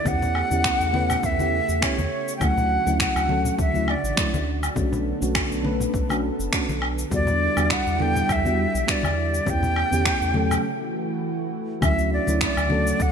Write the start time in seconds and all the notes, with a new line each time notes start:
0.05 E2 C#3 A3 B3 C#4 E4 G4 F#5, kick, high conga, shaker
0.22 low conga, shaker
0.35 low woodblock
0.50 E2 B3 C#4 E4 G4, high conga, shaker
0.64 finger snap, kick, shaker
0.80 E2, shaker
0.93 B3 C#4 E4 B4, high conga
1.10 low conga, low woodblock, shaker
1.23 E2 E5, kick, shaker
1.38 B3 C#4 E4 G4, high conga, shaker
1.69 E2, shaker
1.81 B3 C#4 E4 G4 C#5, finger snap, kick, low woodblock, shaker
1.98 E2, high conga, shaker
2.28 shaker
2.37 F#3 G5
2.41 D2 C#3 D3 A3 C#4 E4 F#4 F#5, kick, high conga, low woodblock, shaker
2.58 low conga, shaker
2.85 D2 F#3 A3 C#4 E4, high conga, shaker
3.00 F#5, finger snap, kick, shaker
3.16 D2, low woodblock, shaker
3.28 F#3 A3 C#4 A4, high conga
3.45 low conga, shaker
3.59 D2 E5, kick, shaker
3.74 F#3 A3 C#4 E4, high conga, shaker
3.88 D5, low woodblock
4.04 A1, shaker
4.16 F#3 A3 C#4 E4, finger snap, kick, shaker
4.33 D2, high conga, shaker
4.63 low woodblock, shaker
4.75 B1 A3 B3 C#4 D4 F#4 A4, kick, high conga, shaker
4.93 low conga, shaker
5.20 B1 A3 C#4 D4 F#4, high conga, shaker
5.35 finger snap, kick, low woodblock, shaker
5.51 B1, shaker
5.63 A3 C#4 D4 B4, high conga
5.80 low conga, shaker
5.94 B1, kick, shaker
6.08 A3 C#4 D4 F#4, high conga, low woodblock, shaker
6.39 F#1, shaker
6.52 A3 C#4 D4 F#4, finger snap, kick, shaker
6.69 B1, high conga, shaker
6.82 low woodblock
6.99 shaker
7.10 E2 G3 B3 D4 E4 F#4 D5, kick, high conga, shaker
7.27 low conga, shaker
7.56 E2 G3 B3 D4 F#4, high conga, low woodblock, shaker
7.70 F#5, finger snap, kick, shaker
7.87 E2, shaker
7.98 G3 B3 D4 A4 G5, high conga
8.15 low conga, shaker
8.29 E2 E5, kick, low woodblock, shaker
8.44 G3 B3 D4 F#4, high conga, shaker
8.75 B1, shaker
8.87 G3 B3 D4 F#4 D5, finger snap, kick, shaker
9.03 E2, high conga, low woodblock, shaker
9.34 shaker
9.46 E2 C#3 A3 B3 C#4 E4 G4 G5, kick, high conga, shaker
9.63 low conga, shaker
9.76 low woodblock
9.91 E2 B3 C#4 E4 G4, high conga, shaker
10.05 finger snap, kick, shaker
10.21 E2, shaker
10.34 F#3 A3 C#4 A4, high conga
10.51 low conga, low woodblock, shaker
10.64 E3 F#4
11.81 D2 C#3 D3 F#3 A3 C#4 E4 F#4 E5, kick, high conga, low woodblock, shaker
11.99 shaker
12.13 D5
12.26 D2 F#3 A3 C#4 E4, high conga, shaker
12.41 D5, finger snap, kick, shaker
12.57 D2, low woodblock, shaker
12.69 F#3 A3 C#4 A4, high conga
12.87 shaker
13.00 D2 F#5, kick, shaker